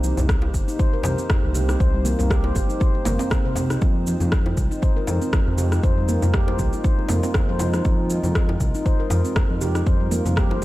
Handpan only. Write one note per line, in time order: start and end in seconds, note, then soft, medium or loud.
0.68 0.79 D#4 medium
0.79 0.92 C5 medium
0.93 0.99 A#4 medium
1.18 1.28 C4 medium
1.54 1.67 G4 medium
1.69 1.79 D#4 medium
1.80 1.93 C5 medium
1.94 2.05 G3 medium
2.05 2.13 A#3 loud
2.19 2.30 A#4 medium
2.30 2.38 G4 loud
2.44 2.55 C5 medium
2.55 2.68 G4 medium
2.69 2.80 D#4 medium
2.80 2.93 C5 medium
3.06 3.13 A#3 loud
3.20 3.26 C4 loud
3.45 3.56 C5 medium
3.70 3.81 D#4 medium
3.82 3.94 C4 medium
4.71 4.82 D#4 medium
4.82 4.95 C5 medium
4.97 5.03 A#4 medium
5.22 5.32 C4 medium
5.58 5.71 G4 medium
5.72 5.83 D#4 medium
5.84 5.96 C5 medium
5.98 6.08 G3 medium
6.09 6.16 A#3 loud
6.23 6.33 A#4 medium
6.34 6.41 G4 loud
6.48 6.59 C5 medium
6.59 6.72 G4 medium
6.73 6.84 D#4 medium
6.84 6.97 C5 medium
7.10 7.17 A#3 loud
7.24 7.30 C4 loud
7.49 7.60 C5 medium
7.74 7.85 D#4 medium
7.85 7.98 C4 medium
8.75 8.85 D#4 medium
8.86 8.98 C5 medium
9.00 9.06 A#4 medium
9.25 9.35 C4 medium
9.61 9.74 G4 medium
9.75 9.86 D#4 medium
9.86 9.99 C5 medium
10.00 10.11 G3 medium
10.11 10.19 A#3 loud
10.26 10.36 A#4 medium
10.36 10.44 G4 loud
10.50 10.61 C5 medium
10.62 10.65 G4 medium